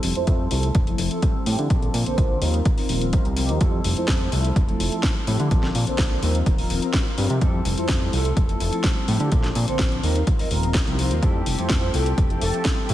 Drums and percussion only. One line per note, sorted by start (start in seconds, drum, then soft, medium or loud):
0.03 open hi-hat loud
0.15 closed hi-hat soft
0.27 kick loud
0.27 closed hi-hat medium
0.51 open hi-hat loud
0.63 closed hi-hat medium
0.75 kick loud
0.75 closed hi-hat medium
0.87 closed hi-hat soft
0.98 open hi-hat loud
1.11 closed hi-hat medium
1.22 kick loud
1.22 closed hi-hat medium
1.46 open hi-hat loud
1.59 closed hi-hat soft
1.70 kick loud
1.70 closed hi-hat medium
1.82 closed hi-hat soft
1.94 open hi-hat loud
2.06 closed hi-hat soft
2.18 kick loud
2.18 closed hi-hat medium
2.42 open hi-hat loud
2.54 closed hi-hat soft
2.65 kick loud
2.65 closed hi-hat medium
2.78 open hi-hat medium
2.89 open hi-hat loud
3.01 closed hi-hat medium
3.13 kick loud
3.13 closed hi-hat medium
3.25 closed hi-hat soft
3.37 open hi-hat loud
3.49 closed hi-hat soft
3.61 kick loud
3.61 closed hi-hat medium
3.84 open hi-hat loud
3.97 closed hi-hat medium
4.08 kick loud
4.08 snare loud
4.08 closed hi-hat medium
4.32 open hi-hat loud
4.45 closed hi-hat medium
4.56 kick loud
4.56 closed hi-hat medium
4.69 closed hi-hat soft
4.80 open hi-hat loud
4.92 closed hi-hat medium
5.03 kick loud
5.03 snare loud
5.03 closed hi-hat medium
5.27 open hi-hat loud
5.40 closed hi-hat soft
5.51 kick loud
5.51 closed hi-hat medium
5.63 snare soft
5.75 open hi-hat loud
5.87 closed hi-hat medium
5.98 kick loud
5.98 snare loud
5.98 closed hi-hat medium
6.23 open hi-hat loud
6.35 closed hi-hat medium
6.46 kick loud
6.46 closed hi-hat medium
6.58 open hi-hat medium
6.70 open hi-hat loud
6.82 closed hi-hat medium
6.93 kick loud
6.93 snare loud
6.93 closed hi-hat medium
7.18 open hi-hat loud
7.30 closed hi-hat medium
7.41 kick loud
7.41 closed hi-hat medium
7.65 open hi-hat loud
7.78 closed hi-hat medium
7.89 kick loud
7.89 snare loud
7.89 closed hi-hat medium
8.13 open hi-hat medium
8.25 closed hi-hat medium
8.37 kick loud
8.37 closed hi-hat medium
8.49 closed hi-hat soft
8.60 open hi-hat medium
8.73 closed hi-hat medium
8.84 kick loud
8.84 snare loud
8.84 closed hi-hat medium
9.08 open hi-hat loud
9.20 closed hi-hat medium
9.32 kick loud
9.32 closed hi-hat medium
9.43 snare soft
9.43 closed hi-hat soft
9.55 open hi-hat loud
9.68 closed hi-hat medium
9.79 kick loud
9.79 snare loud
9.79 closed hi-hat medium
9.92 closed hi-hat soft
10.03 open hi-hat loud
10.16 closed hi-hat medium
10.27 kick loud
10.27 closed hi-hat medium
10.39 open hi-hat medium
10.51 open hi-hat loud
10.63 closed hi-hat medium
10.74 kick loud
10.74 snare loud
10.74 closed hi-hat medium
10.87 closed hi-hat soft
10.99 open hi-hat loud
11.11 closed hi-hat medium
11.23 kick loud
11.23 closed hi-hat medium
11.46 open hi-hat loud
11.59 closed hi-hat medium
11.69 kick loud
11.69 snare loud
11.69 closed hi-hat medium
11.94 open hi-hat loud
12.06 closed hi-hat medium
12.18 kick loud
12.18 closed hi-hat medium
12.30 closed hi-hat soft
12.41 open hi-hat loud
12.54 closed hi-hat medium
12.65 kick loud
12.65 snare loud
12.65 closed hi-hat medium
12.89 open hi-hat loud